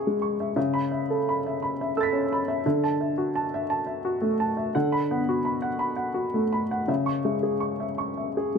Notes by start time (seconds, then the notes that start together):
Already playing: C#3 G#4 E5 C#6
0.07 G#3
0.22 C#6
0.40 E5
0.56 C#3 E5
0.74 B5
0.91 E5
1.10 A4
1.29 B5
1.47 E5
1.62 B5
1.81 E5
1.97 A4 E6 A6
2.03 B6
2.13 C#4
2.33 B5
2.48 E5
2.66 D3 E5
2.84 A5
3.01 E5
3.18 F#4
3.35 A5
3.54 E5
3.70 A5
3.87 E5
4.05 F#4
4.22 A3
4.40 A5
4.57 E5
4.75 D3 F#5
4.92 B5
5.11 B3 F#5
5.29 F#4
5.45 B5
5.62 F#5
5.79 B5
5.96 F#5
6.14 F#4
6.34 A3
6.53 B5
6.71 F#5
6.88 C#3 E5
7.06 C#6
7.25 G#3 E5
7.43 G#4
7.60 C#6
7.80 E5
7.98 C#6
8.17 E5
8.37 G#4